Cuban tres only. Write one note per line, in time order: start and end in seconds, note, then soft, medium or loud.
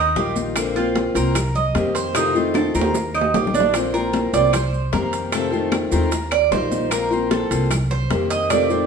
0.00 0.16 D#4 medium
0.16 0.36 G4 medium
0.76 1.14 F4 medium
1.16 1.54 A#4 medium
1.55 1.94 D#5 medium
1.95 2.14 C5 medium
2.15 2.54 D#4 medium
2.55 2.74 A4 medium
2.75 3.13 A#4 medium
3.15 3.34 D#4 medium
3.34 3.53 G4 medium
3.54 3.73 D4 medium
3.94 4.31 A#4 medium
4.34 4.53 D5 loud
4.54 4.90 C5 medium
4.93 5.30 A#4 medium
5.32 5.69 A4 medium
5.92 6.29 A#4 medium
6.32 6.51 D5 medium
6.52 6.89 C5 medium
6.92 7.28 A#4 medium
7.31 7.68 A4 medium
7.91 8.28 C5 medium
8.30 8.50 D#5 loud
8.50 8.87 D5 medium